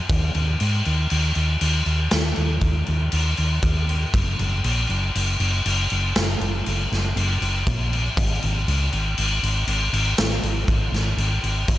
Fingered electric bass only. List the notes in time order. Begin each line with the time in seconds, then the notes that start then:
0.10 D#2
0.35 D#2
0.61 G#2
0.86 D#2
1.11 D#2
1.36 D#2
1.61 D#2
1.86 D#2
2.12 D#2
2.37 D#2
2.62 D#2
2.88 D#2
3.13 D#2
3.38 D#2
3.63 D#2
4.14 F#1
4.39 F#1
4.64 A#1
4.89 F#1
5.15 F#1
5.40 F#1
5.66 F#1
5.91 F#1
6.16 F#1
6.40 F#1
6.67 F#1
6.92 F#1
7.16 F#1
7.41 F#1
7.67 A#1
8.17 G#1
8.43 G#1
8.68 C#2
8.93 G#1
9.18 G#1
9.43 G#1
9.67 G#1
9.93 G#1
10.19 G#1
10.43 G#1
10.68 G#1
10.92 G#1
11.17 G#1
11.43 G#1
11.68 G#1